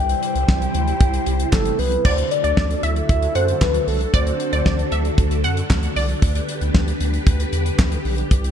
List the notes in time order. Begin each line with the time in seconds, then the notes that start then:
Already playing: C2 C3 G3 E4 C5 G5
0.09 closed hi-hat
0.23 closed hi-hat
0.35 C2, closed hi-hat
0.48 C2, kick, snare
0.62 closed hi-hat
0.74 D2, closed hi-hat
0.88 closed hi-hat
1.01 C2, kick, closed hi-hat
1.14 closed hi-hat
1.26 C2, closed hi-hat
1.40 closed hi-hat
1.53 G1 A4, kick, snare, clap
1.65 closed hi-hat
1.79 C2 B4, open hi-hat
1.92 closed hi-hat
2.05 D2 D3 D4 F#4 A4 C5 D5, kick, crash
2.18 closed hi-hat
2.31 D5, closed hi-hat
2.44 D2 D5, closed hi-hat
2.57 D2 D5, kick, snare
2.70 closed hi-hat
2.83 D2 E5, closed hi-hat
2.96 closed hi-hat
3.09 D2 E5, kick, closed hi-hat
3.22 closed hi-hat
3.35 F#2 C5 F#5, closed hi-hat
3.48 closed hi-hat
3.61 D2 B4, kick, snare, clap
3.74 closed hi-hat
3.87 C2 A4, open hi-hat
4.01 closed hi-hat
4.14 D2 C5 D5, kick, closed hi-hat
4.27 closed hi-hat
4.40 closed hi-hat
4.53 D2 D5, closed hi-hat
4.66 D2 D5, kick, snare
4.79 closed hi-hat
4.92 D2 E5, closed hi-hat
5.05 closed hi-hat
5.18 D2, kick, closed hi-hat
5.31 closed hi-hat
5.44 F#2 F#5, closed hi-hat
5.57 closed hi-hat
5.70 D2, kick, snare, clap
5.83 closed hi-hat
5.96 C2 D5, open hi-hat
6.09 closed hi-hat
6.22 D2 G4 B4, kick, closed hi-hat
6.35 closed hi-hat
6.49 closed hi-hat
6.61 D2, closed hi-hat
6.74 D2, kick, snare
6.88 closed hi-hat
7.00 D2, closed hi-hat
7.14 closed hi-hat
7.27 D2, kick, closed hi-hat
7.40 closed hi-hat
7.53 E2, closed hi-hat
7.66 closed hi-hat
7.79 D2, kick, snare, clap
7.92 closed hi-hat
8.05 B1, open hi-hat
8.18 closed hi-hat
8.31 C2 C3 C4 E4, kick, closed hi-hat
8.44 closed hi-hat